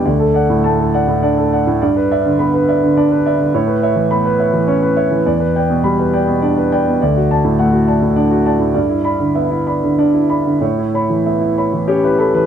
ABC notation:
X:1
M:3/4
L:1/16
Q:1/4=103
K:Glyd
V:1 name="Grand piano"
d A [df] A,, a A [df] A,, d A [df] A,, | d B [de] D, b B [de] D, d B [de] D, | c B [ce] E, b B [ce] E, c B [ce] E, | d B [dg] B,, b B [dg] B,, d B [dg] B,, |
d F [da] A,, f F [da] A,, d F [da] A,, | d E [db] D, e E [db] D, d E [db] D, | c E [cb] E, e E [cb] E, [Gc] [EB] [Acb] [E,B] |]
V:2 name="Grand piano"
D,,4 A,4 D4 | G,,4 B,4 D4 | A,,4 B,4 C4 | E,,4 G,4 D4 |
D,,4 A,4 D4 | G,,4 B,4 D4 | A,,4 B,4 C4 |]